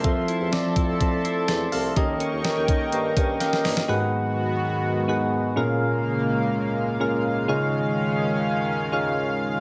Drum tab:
HH |x-x-x-x-x-x-x-o-|x-x-x-x-x-x-x-o-|----------------|----------------|
SD |----o-------o---|----o-------oooo|----------------|----------------|
BD |o-----o-o-------|o-----o---o-----|----------------|----------------|

HH |----------------|
SD |----------------|
BD |----------------|